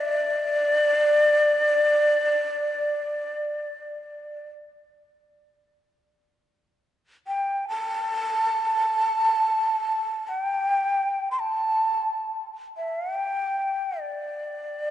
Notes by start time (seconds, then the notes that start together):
Already playing: D5
7.27 G5
7.68 A5
10.28 G5
11.31 C6
11.39 A5
12.77 E5
13.14 G5
14.00 D5